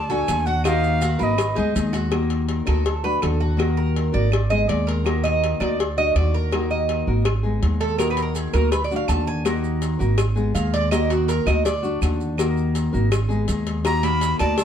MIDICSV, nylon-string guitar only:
0, 0, Header, 1, 3, 480
1, 0, Start_track
1, 0, Key_signature, -6, "minor"
1, 0, Tempo, 366300
1, 861, Time_signature, 4, 2, 24, 8
1, 19184, End_track
2, 0, Start_track
2, 0, Title_t, "Nylon-string guitar"
2, 0, Program_c, 0, 24
2, 125, Note_on_c, 0, 66, 88
2, 142, Note_on_c, 0, 62, 78
2, 148, Note_on_c, 0, 57, 68
2, 358, Note_off_c, 0, 57, 0
2, 362, Note_off_c, 0, 62, 0
2, 363, Note_off_c, 0, 66, 0
2, 365, Note_on_c, 0, 50, 53
2, 374, Note_on_c, 0, 57, 59
2, 377, Note_on_c, 0, 62, 62
2, 389, Note_on_c, 0, 66, 61
2, 842, Note_off_c, 0, 66, 0
2, 843, Note_on_c, 0, 51, 87
2, 844, Note_off_c, 0, 50, 0
2, 848, Note_off_c, 0, 57, 0
2, 850, Note_off_c, 0, 62, 0
2, 850, Note_on_c, 0, 58, 90
2, 853, Note_on_c, 0, 63, 89
2, 858, Note_on_c, 0, 66, 96
2, 869, Note_on_c, 0, 70, 89
2, 1537, Note_off_c, 0, 70, 0
2, 1548, Note_off_c, 0, 66, 0
2, 1553, Note_on_c, 0, 70, 70
2, 1558, Note_off_c, 0, 63, 0
2, 1563, Note_off_c, 0, 51, 0
2, 1563, Note_on_c, 0, 66, 68
2, 1567, Note_off_c, 0, 58, 0
2, 1574, Note_on_c, 0, 63, 71
2, 1581, Note_on_c, 0, 58, 68
2, 1796, Note_off_c, 0, 63, 0
2, 1798, Note_off_c, 0, 58, 0
2, 1798, Note_off_c, 0, 70, 0
2, 1803, Note_off_c, 0, 66, 0
2, 2036, Note_on_c, 0, 68, 90
2, 2048, Note_on_c, 0, 63, 76
2, 2052, Note_on_c, 0, 59, 66
2, 2060, Note_on_c, 0, 56, 69
2, 2270, Note_off_c, 0, 56, 0
2, 2278, Note_off_c, 0, 59, 0
2, 2280, Note_off_c, 0, 68, 0
2, 2285, Note_on_c, 0, 56, 51
2, 2286, Note_off_c, 0, 63, 0
2, 2294, Note_on_c, 0, 59, 51
2, 2299, Note_on_c, 0, 63, 61
2, 2306, Note_on_c, 0, 68, 60
2, 2761, Note_on_c, 0, 51, 89
2, 2763, Note_off_c, 0, 63, 0
2, 2765, Note_off_c, 0, 56, 0
2, 2769, Note_off_c, 0, 59, 0
2, 2774, Note_on_c, 0, 58, 78
2, 2775, Note_off_c, 0, 68, 0
2, 2778, Note_on_c, 0, 63, 85
2, 2780, Note_on_c, 0, 66, 83
2, 2787, Note_on_c, 0, 70, 83
2, 3465, Note_off_c, 0, 70, 0
2, 3474, Note_off_c, 0, 66, 0
2, 3479, Note_off_c, 0, 63, 0
2, 3481, Note_on_c, 0, 70, 69
2, 3484, Note_off_c, 0, 51, 0
2, 3490, Note_off_c, 0, 58, 0
2, 3490, Note_on_c, 0, 66, 68
2, 3495, Note_on_c, 0, 63, 68
2, 3504, Note_on_c, 0, 58, 56
2, 3721, Note_off_c, 0, 66, 0
2, 3723, Note_off_c, 0, 70, 0
2, 3724, Note_off_c, 0, 58, 0
2, 3726, Note_off_c, 0, 63, 0
2, 3978, Note_on_c, 0, 66, 73
2, 3985, Note_on_c, 0, 62, 71
2, 3998, Note_on_c, 0, 57, 68
2, 4196, Note_off_c, 0, 57, 0
2, 4200, Note_off_c, 0, 62, 0
2, 4203, Note_on_c, 0, 50, 60
2, 4211, Note_on_c, 0, 57, 56
2, 4212, Note_off_c, 0, 66, 0
2, 4215, Note_on_c, 0, 62, 56
2, 4227, Note_on_c, 0, 66, 56
2, 4676, Note_off_c, 0, 50, 0
2, 4678, Note_on_c, 0, 51, 91
2, 4682, Note_on_c, 0, 58, 80
2, 4684, Note_off_c, 0, 66, 0
2, 4687, Note_off_c, 0, 57, 0
2, 4691, Note_off_c, 0, 62, 0
2, 4692, Note_on_c, 0, 63, 78
2, 4699, Note_on_c, 0, 66, 95
2, 4706, Note_on_c, 0, 70, 85
2, 5387, Note_off_c, 0, 70, 0
2, 5394, Note_off_c, 0, 66, 0
2, 5403, Note_off_c, 0, 51, 0
2, 5403, Note_on_c, 0, 70, 71
2, 5405, Note_off_c, 0, 58, 0
2, 5405, Note_off_c, 0, 63, 0
2, 5410, Note_on_c, 0, 66, 69
2, 5420, Note_on_c, 0, 63, 73
2, 5423, Note_on_c, 0, 58, 63
2, 5641, Note_off_c, 0, 63, 0
2, 5644, Note_off_c, 0, 58, 0
2, 5646, Note_off_c, 0, 70, 0
2, 5649, Note_off_c, 0, 66, 0
2, 5892, Note_on_c, 0, 68, 73
2, 5898, Note_on_c, 0, 63, 69
2, 5909, Note_on_c, 0, 59, 68
2, 5911, Note_on_c, 0, 56, 61
2, 6108, Note_off_c, 0, 56, 0
2, 6113, Note_off_c, 0, 59, 0
2, 6120, Note_off_c, 0, 63, 0
2, 6124, Note_on_c, 0, 56, 55
2, 6127, Note_off_c, 0, 68, 0
2, 6129, Note_on_c, 0, 59, 55
2, 6136, Note_on_c, 0, 63, 62
2, 6143, Note_on_c, 0, 68, 63
2, 6603, Note_off_c, 0, 63, 0
2, 6607, Note_off_c, 0, 56, 0
2, 6609, Note_off_c, 0, 59, 0
2, 6609, Note_on_c, 0, 51, 80
2, 6613, Note_on_c, 0, 58, 75
2, 6617, Note_off_c, 0, 68, 0
2, 6619, Note_on_c, 0, 63, 83
2, 6621, Note_on_c, 0, 66, 92
2, 6629, Note_on_c, 0, 70, 89
2, 7327, Note_off_c, 0, 70, 0
2, 7330, Note_off_c, 0, 51, 0
2, 7332, Note_off_c, 0, 58, 0
2, 7335, Note_off_c, 0, 63, 0
2, 7337, Note_off_c, 0, 66, 0
2, 7343, Note_on_c, 0, 70, 81
2, 7351, Note_on_c, 0, 66, 73
2, 7357, Note_on_c, 0, 63, 71
2, 7367, Note_on_c, 0, 58, 64
2, 7577, Note_off_c, 0, 70, 0
2, 7578, Note_off_c, 0, 66, 0
2, 7579, Note_off_c, 0, 58, 0
2, 7581, Note_off_c, 0, 63, 0
2, 7821, Note_on_c, 0, 66, 75
2, 7838, Note_on_c, 0, 62, 74
2, 7842, Note_on_c, 0, 57, 67
2, 8056, Note_off_c, 0, 66, 0
2, 8064, Note_off_c, 0, 57, 0
2, 8065, Note_off_c, 0, 62, 0
2, 8071, Note_on_c, 0, 50, 45
2, 8080, Note_on_c, 0, 57, 63
2, 8088, Note_on_c, 0, 62, 57
2, 8095, Note_on_c, 0, 66, 59
2, 8542, Note_off_c, 0, 50, 0
2, 8546, Note_off_c, 0, 57, 0
2, 8550, Note_off_c, 0, 62, 0
2, 8551, Note_on_c, 0, 51, 78
2, 8554, Note_off_c, 0, 66, 0
2, 8557, Note_on_c, 0, 58, 81
2, 8562, Note_on_c, 0, 63, 80
2, 8571, Note_on_c, 0, 66, 91
2, 8578, Note_on_c, 0, 70, 82
2, 9257, Note_off_c, 0, 70, 0
2, 9260, Note_off_c, 0, 66, 0
2, 9262, Note_off_c, 0, 51, 0
2, 9265, Note_off_c, 0, 58, 0
2, 9268, Note_off_c, 0, 63, 0
2, 9273, Note_on_c, 0, 70, 72
2, 9276, Note_on_c, 0, 66, 70
2, 9290, Note_on_c, 0, 63, 61
2, 9294, Note_on_c, 0, 58, 64
2, 9502, Note_off_c, 0, 63, 0
2, 9503, Note_off_c, 0, 70, 0
2, 9504, Note_off_c, 0, 66, 0
2, 9508, Note_off_c, 0, 58, 0
2, 9738, Note_on_c, 0, 68, 75
2, 9749, Note_on_c, 0, 63, 63
2, 9754, Note_on_c, 0, 59, 70
2, 9760, Note_on_c, 0, 56, 60
2, 9965, Note_off_c, 0, 56, 0
2, 9974, Note_off_c, 0, 59, 0
2, 9976, Note_off_c, 0, 68, 0
2, 9980, Note_on_c, 0, 56, 54
2, 9981, Note_off_c, 0, 63, 0
2, 9990, Note_on_c, 0, 59, 53
2, 9997, Note_on_c, 0, 63, 58
2, 10004, Note_on_c, 0, 68, 57
2, 10455, Note_on_c, 0, 51, 75
2, 10457, Note_off_c, 0, 56, 0
2, 10458, Note_off_c, 0, 63, 0
2, 10462, Note_off_c, 0, 59, 0
2, 10465, Note_on_c, 0, 58, 80
2, 10469, Note_off_c, 0, 68, 0
2, 10474, Note_on_c, 0, 63, 88
2, 10475, Note_on_c, 0, 66, 76
2, 10477, Note_on_c, 0, 70, 83
2, 11171, Note_off_c, 0, 70, 0
2, 11174, Note_off_c, 0, 51, 0
2, 11180, Note_off_c, 0, 58, 0
2, 11184, Note_off_c, 0, 63, 0
2, 11185, Note_off_c, 0, 66, 0
2, 11187, Note_on_c, 0, 70, 82
2, 11199, Note_on_c, 0, 66, 77
2, 11205, Note_on_c, 0, 63, 70
2, 11211, Note_on_c, 0, 58, 66
2, 11420, Note_off_c, 0, 70, 0
2, 11422, Note_off_c, 0, 58, 0
2, 11426, Note_off_c, 0, 66, 0
2, 11429, Note_off_c, 0, 63, 0
2, 11677, Note_on_c, 0, 66, 81
2, 11690, Note_on_c, 0, 62, 71
2, 11698, Note_on_c, 0, 57, 59
2, 11898, Note_off_c, 0, 57, 0
2, 11905, Note_off_c, 0, 66, 0
2, 11910, Note_on_c, 0, 50, 54
2, 11912, Note_off_c, 0, 62, 0
2, 11914, Note_on_c, 0, 57, 57
2, 11927, Note_on_c, 0, 62, 58
2, 11931, Note_on_c, 0, 66, 58
2, 12376, Note_off_c, 0, 50, 0
2, 12378, Note_on_c, 0, 51, 78
2, 12379, Note_off_c, 0, 66, 0
2, 12382, Note_on_c, 0, 58, 83
2, 12384, Note_off_c, 0, 57, 0
2, 12390, Note_off_c, 0, 62, 0
2, 12394, Note_on_c, 0, 63, 87
2, 12395, Note_on_c, 0, 66, 90
2, 12400, Note_on_c, 0, 70, 92
2, 13076, Note_off_c, 0, 70, 0
2, 13080, Note_off_c, 0, 66, 0
2, 13090, Note_off_c, 0, 63, 0
2, 13091, Note_on_c, 0, 70, 78
2, 13094, Note_off_c, 0, 58, 0
2, 13095, Note_off_c, 0, 51, 0
2, 13095, Note_on_c, 0, 66, 74
2, 13106, Note_on_c, 0, 63, 64
2, 13110, Note_on_c, 0, 58, 61
2, 13332, Note_off_c, 0, 70, 0
2, 13334, Note_off_c, 0, 63, 0
2, 13334, Note_off_c, 0, 66, 0
2, 13341, Note_off_c, 0, 58, 0
2, 13569, Note_on_c, 0, 68, 88
2, 13580, Note_on_c, 0, 59, 75
2, 13580, Note_on_c, 0, 63, 72
2, 13591, Note_on_c, 0, 56, 64
2, 13799, Note_off_c, 0, 56, 0
2, 13808, Note_off_c, 0, 59, 0
2, 13811, Note_off_c, 0, 68, 0
2, 13814, Note_on_c, 0, 56, 55
2, 13816, Note_off_c, 0, 63, 0
2, 13824, Note_on_c, 0, 59, 54
2, 13832, Note_on_c, 0, 63, 62
2, 13834, Note_on_c, 0, 68, 54
2, 14293, Note_off_c, 0, 56, 0
2, 14298, Note_off_c, 0, 59, 0
2, 14298, Note_off_c, 0, 63, 0
2, 14302, Note_off_c, 0, 68, 0
2, 14304, Note_on_c, 0, 51, 71
2, 14307, Note_on_c, 0, 58, 79
2, 14314, Note_on_c, 0, 63, 83
2, 14316, Note_on_c, 0, 66, 89
2, 14326, Note_on_c, 0, 70, 88
2, 14997, Note_off_c, 0, 70, 0
2, 15007, Note_off_c, 0, 66, 0
2, 15013, Note_on_c, 0, 70, 84
2, 15016, Note_off_c, 0, 63, 0
2, 15017, Note_off_c, 0, 51, 0
2, 15019, Note_off_c, 0, 58, 0
2, 15023, Note_on_c, 0, 66, 77
2, 15031, Note_on_c, 0, 63, 70
2, 15037, Note_on_c, 0, 58, 62
2, 15252, Note_off_c, 0, 70, 0
2, 15257, Note_off_c, 0, 66, 0
2, 15259, Note_off_c, 0, 58, 0
2, 15259, Note_off_c, 0, 63, 0
2, 15497, Note_on_c, 0, 66, 77
2, 15507, Note_on_c, 0, 62, 72
2, 15523, Note_on_c, 0, 57, 68
2, 15729, Note_off_c, 0, 57, 0
2, 15733, Note_off_c, 0, 62, 0
2, 15733, Note_off_c, 0, 66, 0
2, 15737, Note_on_c, 0, 50, 53
2, 15744, Note_on_c, 0, 57, 59
2, 15749, Note_on_c, 0, 62, 59
2, 15761, Note_on_c, 0, 66, 61
2, 16213, Note_off_c, 0, 50, 0
2, 16216, Note_off_c, 0, 57, 0
2, 16216, Note_on_c, 0, 51, 89
2, 16217, Note_off_c, 0, 66, 0
2, 16219, Note_off_c, 0, 62, 0
2, 16224, Note_on_c, 0, 58, 78
2, 16229, Note_on_c, 0, 63, 85
2, 16233, Note_on_c, 0, 66, 79
2, 16235, Note_on_c, 0, 70, 86
2, 16924, Note_off_c, 0, 70, 0
2, 16932, Note_off_c, 0, 51, 0
2, 16934, Note_off_c, 0, 66, 0
2, 16936, Note_off_c, 0, 58, 0
2, 16938, Note_off_c, 0, 63, 0
2, 16940, Note_on_c, 0, 70, 75
2, 16949, Note_on_c, 0, 66, 62
2, 16954, Note_on_c, 0, 63, 70
2, 16960, Note_on_c, 0, 58, 64
2, 17167, Note_off_c, 0, 63, 0
2, 17174, Note_off_c, 0, 58, 0
2, 17174, Note_off_c, 0, 70, 0
2, 17177, Note_off_c, 0, 66, 0
2, 17410, Note_on_c, 0, 68, 84
2, 17421, Note_on_c, 0, 63, 75
2, 17423, Note_on_c, 0, 59, 72
2, 17433, Note_on_c, 0, 56, 65
2, 17647, Note_off_c, 0, 56, 0
2, 17648, Note_off_c, 0, 68, 0
2, 17654, Note_off_c, 0, 63, 0
2, 17655, Note_off_c, 0, 59, 0
2, 17663, Note_on_c, 0, 56, 55
2, 17673, Note_on_c, 0, 59, 53
2, 17681, Note_on_c, 0, 63, 49
2, 17689, Note_on_c, 0, 68, 55
2, 18134, Note_off_c, 0, 56, 0
2, 18134, Note_off_c, 0, 63, 0
2, 18137, Note_on_c, 0, 51, 78
2, 18139, Note_off_c, 0, 59, 0
2, 18147, Note_off_c, 0, 68, 0
2, 18147, Note_on_c, 0, 58, 91
2, 18150, Note_on_c, 0, 63, 83
2, 18155, Note_on_c, 0, 66, 91
2, 18847, Note_off_c, 0, 66, 0
2, 18850, Note_off_c, 0, 51, 0
2, 18855, Note_off_c, 0, 58, 0
2, 18857, Note_off_c, 0, 63, 0
2, 18857, Note_on_c, 0, 70, 79
2, 18863, Note_on_c, 0, 66, 73
2, 18878, Note_on_c, 0, 63, 70
2, 18882, Note_on_c, 0, 58, 57
2, 19091, Note_off_c, 0, 58, 0
2, 19091, Note_off_c, 0, 70, 0
2, 19093, Note_off_c, 0, 66, 0
2, 19098, Note_off_c, 0, 63, 0
2, 19184, End_track
3, 0, Start_track
3, 0, Title_t, "Muted nylon-string guitar strokes"
3, 1802, Note_on_c, 9, 29, 55
3, 1933, Note_off_c, 9, 29, 0
3, 3729, Note_on_c, 9, 29, 52
3, 3860, Note_off_c, 9, 29, 0
3, 5645, Note_on_c, 9, 29, 55
3, 5776, Note_off_c, 9, 29, 0
3, 7584, Note_on_c, 9, 29, 59
3, 7715, Note_off_c, 9, 29, 0
3, 9512, Note_on_c, 9, 29, 59
3, 9643, Note_off_c, 9, 29, 0
3, 11428, Note_on_c, 9, 29, 56
3, 11559, Note_off_c, 9, 29, 0
3, 13344, Note_on_c, 9, 29, 58
3, 13475, Note_off_c, 9, 29, 0
3, 15264, Note_on_c, 9, 29, 59
3, 15396, Note_off_c, 9, 29, 0
3, 17179, Note_on_c, 9, 29, 61
3, 17310, Note_off_c, 9, 29, 0
3, 19097, Note_on_c, 9, 29, 65
3, 19184, Note_off_c, 9, 29, 0
3, 19184, End_track
0, 0, End_of_file